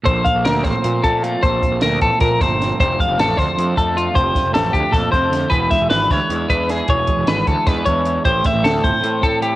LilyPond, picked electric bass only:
\new Staff \with { instrumentName = "Picked electric bass" } { \clef bass \time 7/8 \key bes \lydian \tempo 4 = 154 bes,,8 r16 bes,,16 d,8 a,,16 r16 bes,8 bes,4 | bes,,8 r16 bes,,16 d,8 a,,16 r16 bes,8 g,,4 | f,,8 r16 f,,16 a,,8 d,16 r16 f,8 f,4 | f,,8 r16 f,,16 a,,8 d,16 r16 f,8 f,4 |
e,,8 r16 e,,16 gis,,8 d,16 r16 e,8 e,4 | e,,8 r16 e,,16 gis,,8 d,16 r16 e,8 e,4 | a,,8 r16 a,,16 d,8 g,,16 r16 a,8 a,4 | }